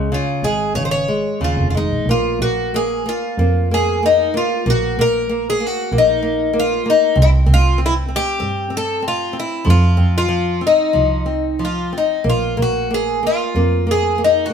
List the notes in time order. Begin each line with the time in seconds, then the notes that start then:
Already playing: C#2 C#3 G#3
0.12 C#3 F4
0.43 G#1 G#3 G#4
0.75 G#1 C#3 C#5
0.85 C5
0.91 C#5
1.08 G#3
1.40 D#2 C#3
1.44 F4
1.57 F1
1.70 G#1 F4
1.74 G#3 D#4
1.90 A#1
2.06 A#1 A#3
2.11 F4
2.39 A#1 A#3 F#4
2.74 A#3 G#4
3.06 A#3 F4
3.38 F2 A#3
3.71 A#3 G#4
4.03 A#3 D#4
4.34 A#3 F4
4.66 A#1 A#3
4.70 F#4
4.97 A#1 A#3 A#4
5.29 A#3
5.50 G#4
5.60 A#3
5.67 F#4
5.92 A#1 A#3
5.98 D#4
6.22 A#3
6.53 A#3
6.59 F4
6.86 A#3
6.90 D#4
7.15 C2 C4
7.22 E4
7.46 C2 C4
7.54 F4
7.78 C4
7.86 E4
8.09 C4
8.16 G4
8.40 G2 C4
8.70 C4
8.77 A4
9.02 C4
9.08 F4
9.33 C4
9.40 E4
9.65 F2 F3
9.70 F4
9.97 F2 C4
10.18 F4
10.29 F3
10.61 C4
10.67 D#4
10.93 C2 F3
11.26 C4
11.59 F3
11.65 F4
11.93 C4
11.98 D#4
12.24 A#1 A#3
12.29 F4
12.57 A#1 A#3
12.62 F#4
12.91 A#3 G#4
13.23 A#3 F4
13.55 F2 A#3
13.87 A#3
13.91 G#4
14.18 A#3
14.24 D#4
14.46 F#4
14.50 A#3